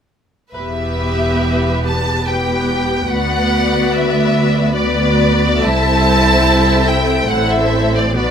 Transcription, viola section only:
0.55 2.23 B3 soft
0.55 2.23 G4 soft
2.27 3.09 B3 soft
2.27 3.09 G4 soft
3.10 4.72 B3 soft
3.10 4.72 F#4 soft
4.75 5.61 B3 soft
4.75 5.61 F#4 soft
5.63 7.28 C4 medium
5.63 7.29 E4 medium
7.30 8.14 C4 soft
7.30 8.14 E4 soft
8.16 8.31 F#3 soft
8.16 8.31 B3 soft

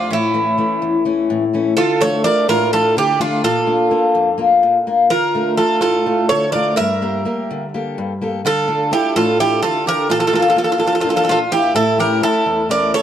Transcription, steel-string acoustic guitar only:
0.11 0.57 A2 medium
0.34 0.57 E3 soft
0.34 0.57 A3 soft
0.34 0.57 C#4 medium
0.58 0.96 E3 soft
0.58 0.96 A3 soft
0.58 0.96 C#4 medium
0.82 1.28 E2 medium
1.05 1.44 E3 soft
1.05 1.43 A3 soft
1.05 1.44 C#4 medium
1.30 1.76 A2 medium
1.54 1.72 E3 soft
1.54 1.73 A3 soft
1.54 1.73 C#4 medium
1.77 2.23 D3 medium
2.01 2.24 A3 soft
2.01 2.24 D4 soft
2.01 2.25 F4 medium
2.25 2.63 A3 soft
2.25 2.63 D4 soft
2.25 2.63 F4 soft
2.48 2.94 A2 medium
2.72 3.10 A3 soft
2.72 3.11 D4 soft
2.72 3.11 F4 soft
2.97 3.42 D3 medium
3.19 3.38 A3 soft
3.19 3.39 D4 soft
3.19 3.39 F4 medium
3.44 3.90 A#2 medium
3.67 3.90 A#3 soft
3.67 3.90 D4 soft
3.67 3.90 F4 soft
3.91 4.29 A#3 soft
3.91 4.29 D4 soft
3.91 4.29 F4 medium
4.15 4.61 F2 medium
4.38 4.76 A#3 soft
4.38 4.77 D4 soft
4.38 4.77 F4 medium
4.63 5.09 A#2 medium
4.87 5.06 A#3 soft
4.87 5.06 D4 soft
4.87 5.06 F4 soft
5.12 5.57 D3 medium
5.35 5.57 A3 medium
5.35 5.58 D4 soft
5.35 5.58 F4 soft
5.59 5.96 A3 soft
5.59 5.96 D4 soft
5.59 5.97 F4 soft
5.83 6.28 A2 medium
6.06 6.44 A3 soft
6.06 6.44 D4 soft
6.06 6.44 F4 soft
6.31 6.77 D3 medium
6.54 6.73 A3 soft
6.54 6.73 D4 soft
6.54 6.74 F4 medium
6.79 7.24 G2 medium
7.02 7.24 A#3 soft
7.02 7.25 G4 soft
7.02 7.25 A#4 medium
7.25 7.63 A#3 soft
7.25 7.63 G4 soft
7.25 7.64 A#4 medium
7.51 7.96 D3 medium
7.74 8.12 A#3 soft
7.74 8.12 G4 soft
7.74 8.12 A4 soft
7.98 8.43 G2 medium
8.21 8.40 A#3 soft
8.21 8.40 G4 soft
8.21 8.41 A4 soft
8.45 8.90 D3 medium
8.68 8.90 D4 soft
8.68 8.91 F4 soft
8.68 8.91 A4 medium
8.91 9.29 D4 medium
8.91 9.30 F4 soft
8.91 9.30 A4 soft
9.16 9.62 A2 medium
9.39 9.77 D4 soft
9.39 9.78 F4 soft
9.39 9.78 A4 soft
9.63 10.09 D3 medium
9.86 10.05 D4 soft
9.86 10.05 F4 soft
9.86 10.05 A4 medium
10.09 10.56 A#2 medium
10.33 10.55 A#3 soft
10.33 10.55 D4 soft
10.33 10.55 F4 medium
10.56 10.95 A#3 soft
10.56 10.95 D4 soft
10.56 10.95 F4 soft
10.80 11.27 F2 medium
11.04 11.43 A#3 soft
11.04 11.43 D4 soft
11.04 11.43 F4 soft
11.28 11.74 A#2 medium
11.51 11.71 A#3 soft
11.51 11.71 D4 soft
11.51 11.71 F4 soft
11.75 12.21 A2 medium
11.98 12.20 A3 soft
11.98 12.20 C#4 soft
11.98 12.21 E4 medium
12.21 12.60 A3 soft
12.21 12.60 C#4 soft
12.21 12.61 E4 soft
12.46 12.93 E2 medium
12.69 13.02 A3 soft
12.69 13.02 C#4 soft
12.69 13.02 E4 medium
12.94 13.02 A2 medium

